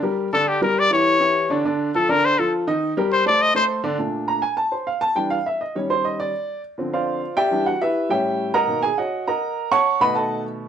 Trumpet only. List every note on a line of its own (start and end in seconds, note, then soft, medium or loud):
0.33 0.50 A4 medium
0.48 0.62 G4 medium
0.63 0.81 A#4 medium
0.79 0.92 D5 loud
0.93 1.62 C#5 loud
1.96 2.12 A4 medium
2.10 2.27 A#4 loud
2.25 2.41 C5 loud
2.39 2.53 A4 medium
3.12 3.25 C5 loud
3.27 3.43 D5 loud
3.42 3.55 D#5 loud
3.56 3.65 C5 loud